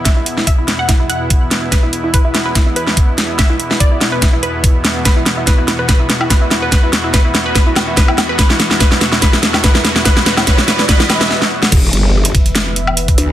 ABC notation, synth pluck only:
X:1
M:4/4
L:1/16
Q:"Swing 16ths" 1/4=144
K:Clyd
V:1 name="Synth pluck"
e E z E e E E f E E f4- f z | B E z E B E E B E E B4- B z | e E z E d E E B E E B4- B z | B E z E B E E B B E z E B E E B |
B E z E B E E B B E z E B E E B | B E z E B E z E B E z E B E z E | B E B E B E B E B E B E z4 | z16 |]